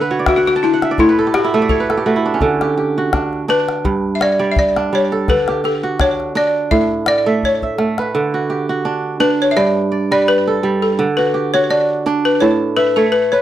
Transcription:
Already playing: kora D3 D4 A4 E5 F#5, balafon A4
0.01 kora B4
0.11 kora F#4 C#5
0.19 kora D5
0.26 balafon F#4, kora E5, calabash thump, calabash click
0.36 balafon F#4, kora F#5
0.46 balafon F#4, kora G5, calabash click
0.56 kora A5
0.63 kora D4 G5, balafon E4
0.74 kora F#5
0.82 kora E5, calabash click
0.91 kora D5
0.98 kora A2 C#5, balafon E4, calabash thump
1.09 kora B4
1.19 kora A4
1.27 kora G4
1.34 kora F#4, balafon G4, calabash click
1.44 kora E4
1.54 kora A3 E5
1.62 kora D5
1.69 balafon A4, kora C#5, calabash thump
1.80 kora B4
1.90 kora A4, calabash click
1.97 kora G4
2.06 kora A3 F#4
2.16 kora E4
2.26 kora D4
2.34 kora C#4
2.41 kora D3, calabash thump
2.61 kora G4, calabash click
2.77 kora G4
2.98 kora F#4
3.13 kora D4, calabash thump, calabash click
3.33 calabash click
3.48 kora D4, balafon B4
3.69 calabash click
3.85 kora G2, calabash thump
4.15 balafon E5
4.21 kora C#5, balafon D5, calabash click
4.39 kora G3 D5
4.52 balafon E5
4.56 balafon D5, calabash thump
4.76 kora D4, calabash click
4.93 kora G3, balafon C#5
5.12 kora A4, calabash click
5.28 kora D3, balafon B4, calabash thump, calabash click
5.48 kora G4, calabash click
5.64 kora G4, balafon A4, calabash click
5.83 kora F#4, calabash click
6.00 kora D4, balafon C#5, calabash thump, calabash click
6.20 calabash click
6.35 kora D4, balafon D5
6.71 kora A2, balafon E5, calabash thump, calabash click
7.06 kora D5, balafon D5, calabash click
7.26 kora A3 E5
7.43 balafon C#5, calabash thump
7.62 kora E5, calabash thump
7.78 kora A3, calabash click
7.98 kora B4, calabash click
8.15 kora D3
8.34 kora F#4
8.50 kora G4
8.69 kora F#4
8.85 kora D4
9.20 kora D4, balafon B4
9.42 balafon C#5
9.51 balafon E5
9.56 kora G2 G5, balafon D5
9.92 kora D5
10.11 kora G3 B4, balafon D5
10.28 balafon B4
10.47 kora A4
10.63 kora G3
10.82 balafon A4
10.99 kora D3
11.17 kora F#4, balafon B4
11.34 kora G4
11.54 kora F#4, balafon C#5
11.70 kora D4, balafon D5
12.06 kora D4
12.25 balafon B4
12.40 kora A2 A5, balafon C#5
12.77 balafon B4, kora E5
12.96 kora A3 C#5, balafon A4
13.12 balafon B4
13.32 kora B4, balafon C#5

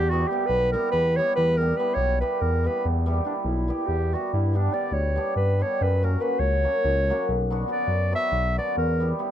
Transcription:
Already playing: analog synth bass E2, clarinet G4
0.10 hammered dulcimer G3 B3 E4 G4, clarinet F#4
0.28 hammered dulcimer G3 B3 E4, clarinet G4
0.33 hammered dulcimer G4
0.46 analog synth bass B1, clarinet B4
0.72 hammered dulcimer G3 B3 E4 G4, clarinet A#4
0.92 analog synth bass E2, clarinet B4
1.17 hammered dulcimer G3 B3 E4, clarinet C#5
1.21 hammered dulcimer G4
1.36 analog synth bass E2, clarinet B4
1.57 hammered dulcimer G3 B3, clarinet A#4
1.62 hammered dulcimer E4 G4
1.77 hammered dulcimer G3 B3 E4 G4, clarinet B4
1.95 analog synth bass B1, clarinet C#5
2.21 hammered dulcimer G3 B3 E4 G4, clarinet B4
2.41 analog synth bass E2, clarinet A#4
2.64 hammered dulcimer G3 B3 E4 G4, clarinet B4
2.85 analog synth bass E2
3.06 hammered dulcimer G3 B3 E4 G4
3.25 hammered dulcimer G3 B3 E4 G4, clarinet D4
3.44 analog synth bass B1, clarinet E4
3.68 hammered dulcimer G3 B3 E4 G4
3.87 analog synth bass E2, clarinet G4
4.13 hammered dulcimer G3 B3 E4 G4, clarinet F#4
4.33 analog synth bass G2, clarinet E4
4.53 hammered dulcimer G3 B3 D4 G4, clarinet D4
4.72 hammered dulcimer G3 B3 D4 G4, clarinet D5
4.91 analog synth bass D2, clarinet C#5
5.16 hammered dulcimer G3 B3 D4 G4
5.36 analog synth bass G2, clarinet B4
5.59 hammered dulcimer G3 B3 D4 G4, clarinet C#5
5.81 analog synth bass F#2, clarinet B4
6.03 hammered dulcimer F#3 A#3 C#4 F#4, clarinet A#4
6.20 hammered dulcimer F#3 A#3 C#4 F#4, clarinet B4
6.39 analog synth bass C#2, clarinet C#5
6.63 hammered dulcimer F#3 A#3 C#4 F#4
6.84 analog synth bass C#2
7.10 hammered dulcimer F#3 A#3 C#4 F#4
7.29 analog synth bass B1
7.50 hammered dulcimer F#3 B3 D4 F#4
7.68 hammered dulcimer F#3 B3 D4 F#4, clarinet D5
7.88 analog synth bass F#2
8.11 hammered dulcimer F#3 B3 D4 F#4
8.16 clarinet E5
8.32 analog synth bass B1
8.57 hammered dulcimer F#3 B3 D4 F#4, clarinet D5
8.77 analog synth bass E2, clarinet A#4
9.00 hammered dulcimer G3 B3 E4 G4
9.19 hammered dulcimer G3 B3 E4 G4

